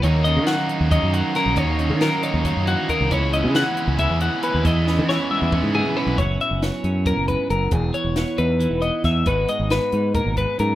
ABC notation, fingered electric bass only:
X:1
M:7/8
L:1/16
Q:1/4=136
K:Elyd
V:1 name="Fingered electric bass" clef=bass
D,,3 D,2 z2 D,,2 F,,2 z2 A,,, | D,,3 D,2 z2 D,,2 F,,2 z2 =C,, | C,,3 C,2 z2 C,,2 E,,2 z2 D,, | E,,3 E,2 z2 E,,2 G,,2 z2 B,,, |
F,,,2 z F,,,2 z F,,3 F,,,2 z F,,,2 | E,,,2 z E,,,2 z E,,3 E,,,2 z E,,2 | G,,,2 z G,,,2 z G,,3 G,,,2 z G,,2 |]